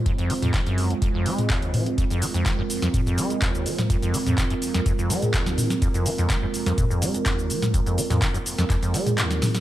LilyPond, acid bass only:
\new Staff \with { instrumentName = "Acid bass" } { \clef bass \time 4/4 \key f \minor \tempo 4 = 125 f,16 f,16 aes16 f,16 ees16 ges,8 f,16 f,16 f,16 aes8 ees,8 f16 f,16 | f,16 f,16 aes16 f,16 ees16 ges,16 r16 f,16 f,16 f,16 aes8 ees,8 f16 f,16 | f,16 f,16 aes16 f,16 ees16 ges,16 r16 f,16 f,16 f,16 aes8 ees,8 f16 f,16 | f,16 f,16 aes16 f,16 ees16 ges,16 r16 f,16 f,16 f,16 aes8 ees,8 f16 f,16 |
f,16 f,16 aes16 f,16 ees16 ges,16 r16 f,16 f,16 f,16 aes8 ees,8 f16 f,16 | }